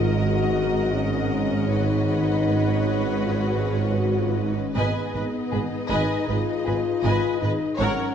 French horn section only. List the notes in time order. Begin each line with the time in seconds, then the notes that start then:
Already playing: F4
0.17 F#4
0.93 C#4
1.67 D#4
3.21 F4
3.42 F#4
3.60 G#4
3.80 F4
3.98 F#4
4.19 F4
4.38 D#4
4.57 C#4
4.77 B3
5.90 D#4
6.28 F4
7.40 D#4
7.79 C#4